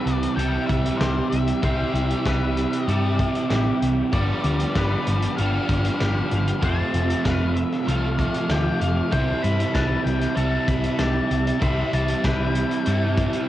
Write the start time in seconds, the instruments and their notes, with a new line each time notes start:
Already playing: overdriven electric guitar C3 E3 G3 C4 E4 G4, ambient pad G4 E5 G5, clean electric guitar B4, lead electric guitar E5
0.06 picked electric bass C2, closed hi-hat
0.13 lead electric guitar D5
0.23 closed hi-hat
0.36 picked electric bass C2, overdriven electric guitar C3 E3 G3 C4 E4, clean electric guitar A4, lead electric guitar G5, closed hi-hat
0.41 overdriven electric guitar G4
0.67 picked electric bass C2, overdriven electric guitar E4 G4, lead electric guitar E5, kick, closed hi-hat
0.71 overdriven electric guitar G3
0.85 closed hi-hat
0.97 picked electric bass C2, overdriven electric guitar E3 G3 E4, clean electric guitar G4, lead electric guitar C5, snare, closed hi-hat
1.02 overdriven electric guitar G4
1.30 picked electric bass C2, lead electric guitar E5, closed hi-hat
1.47 closed hi-hat
1.62 picked electric bass C2, overdriven electric guitar C3 E3 G3 C4 E4 G4, clean electric guitar C5, kick, closed hi-hat
1.93 picked electric bass C2, closed hi-hat
2.11 closed hi-hat
2.25 picked electric bass C2, overdriven electric guitar E3 G3 E4 G4, clean electric guitar B4, kick, snare, closed hi-hat
2.57 closed hi-hat
2.73 closed hi-hat
2.87 picked electric bass G2, overdriven electric guitar C3 E3 G3 C4 E4 G4, clean electric guitar A4, lead electric guitar D5, closed hi-hat
3.18 overdriven electric guitar G3 E4 G4, kick, closed hi-hat
3.35 closed hi-hat
3.49 picked electric bass A1, overdriven electric guitar E3 G3 E4 G4, clean electric guitar G4, snare, closed hi-hat
3.82 picked electric bass C2, closed hi-hat
4.13 picked electric bass G1, overdriven electric guitar G2 D3 F3 G3 B3 D4 G4, ambient pad F4 G4 B5, clean electric guitar D5, lead electric guitar D5, kick, closed hi-hat
4.44 picked electric bass D2, closed hi-hat
4.60 closed hi-hat
4.74 picked electric bass G1, overdriven electric guitar F3 G3 B3 G4, clean electric guitar B4, kick, snare, closed hi-hat
5.07 picked electric bass G1, closed hi-hat
5.22 closed hi-hat
5.37 picked electric bass G1, overdriven electric guitar G2 D3 F3 G3 B3 D4 G4, clean electric guitar A4, lead electric guitar F5, closed hi-hat
5.69 picked electric bass G1, overdriven electric guitar F3 G3 B3 G4, kick, closed hi-hat
5.84 closed hi-hat
6.00 picked electric bass G1, overdriven electric guitar F3 G3 B3 G4, clean electric guitar G4, snare, closed hi-hat
6.31 picked electric bass G1, lead electric guitar F5, closed hi-hat
6.47 closed hi-hat
6.62 picked electric bass F1, overdriven electric guitar F2 C3 F3 A3 C4 F4, ambient pad A4 A5, clean electric guitar C5, lead electric guitar A5, kick, closed hi-hat
6.94 picked electric bass F1, closed hi-hat
7.10 closed hi-hat
7.24 picked electric bass F1, overdriven electric guitar F3 A3 C4 F4, clean electric guitar B4, lead electric guitar F5, kick, snare, closed hi-hat
7.55 lead electric guitar E5, closed hi-hat
7.72 snare, closed hi-hat
7.87 picked electric bass C2, overdriven electric guitar F2 C3 F3 A3 C4 F4, clean electric guitar A4, lead electric guitar F5, closed hi-hat
8.18 overdriven electric guitar F3 A3 C4 F4, kick, closed hi-hat
8.34 closed hi-hat
8.48 picked electric bass D2, overdriven electric guitar F3 A3 C4 F4, clean electric guitar G4, lead electric guitar G5, snare, closed hi-hat
8.80 picked electric bass F1, lead electric guitar F5, closed hi-hat
9.11 picked electric bass C2, overdriven electric guitar C3 E3 G3 C4 E4, ambient pad G4 E5, clean electric guitar C5, lead electric guitar G5, kick, closed hi-hat
9.43 picked electric bass G2, lead electric guitar B5, closed hi-hat
9.60 closed hi-hat
9.74 picked electric bass C2, overdriven electric guitar E3 G3 C4 E4, clean electric guitar B4, lead electric guitar A5, kick, snare, closed hi-hat
10.04 picked electric bass C2, lead electric guitar G5, closed hi-hat
10.21 snare, closed hi-hat
10.37 picked electric bass C2, overdriven electric guitar C3 E3 G3 C4, clean electric guitar A4, lead electric guitar A5, closed hi-hat
10.41 overdriven electric guitar E4
10.68 picked electric bass C2, overdriven electric guitar G3 C4 E4, lead electric guitar B5, kick, closed hi-hat
10.84 closed hi-hat
10.99 picked electric bass C2, overdriven electric guitar E3 G3 C4, clean electric guitar G4, lead electric guitar A5, snare, closed hi-hat
11.03 overdriven electric guitar E4
11.31 picked electric bass C2, closed hi-hat
11.47 closed hi-hat
11.60 picked electric bass C2, overdriven electric guitar C3 E3 G3 C4 E4, clean electric guitar C5, lead electric guitar B5, kick, closed hi-hat
11.93 picked electric bass C2, lead electric guitar A5, closed hi-hat
12.08 closed hi-hat
12.23 picked electric bass C2, overdriven electric guitar E3 G3 C4 E4, clean electric guitar B4, lead electric guitar G5, kick, snare, closed hi-hat
12.55 closed hi-hat
12.71 closed hi-hat
12.85 picked electric bass G2, overdriven electric guitar C3 E3 G3 C4 E4, clean electric guitar A4, closed hi-hat
13.16 overdriven electric guitar G3 C4 E4, kick, closed hi-hat
13.33 closed hi-hat